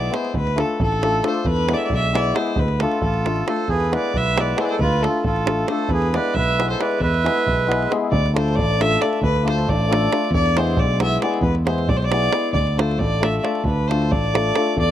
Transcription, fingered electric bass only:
0.36 D2
0.81 A1
1.46 E2
1.93 B1
2.57 D2
3.03 A1
3.68 E2
4.14 B1
4.79 D2
5.24 A1
5.90 E2
6.34 B1
7.00 E2
7.46 B1
8.12 D2
8.57 A1
9.21 D2
9.68 A1
10.31 E2
10.77 B1
11.41 E2
11.88 B1
12.53 D2
12.98 A1
13.64 D2
14.11 A1
14.77 E2

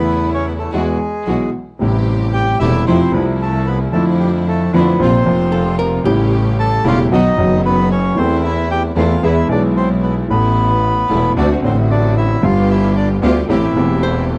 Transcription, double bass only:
Already playing: E2
0.72 E2
1.26 B1
1.81 A1
2.60 E1
2.87 F2
3.13 C2
3.93 F2
4.73 F2
5.00 A#1
5.26 F1
6.06 A1
6.85 E1
7.12 B1
7.38 F#1
8.17 E2
8.95 E2
9.22 E2
9.49 B1
10.30 A1
11.10 E1
11.36 D2
11.63 A1
12.43 G1
13.23 D2
13.50 A1
13.76 E1

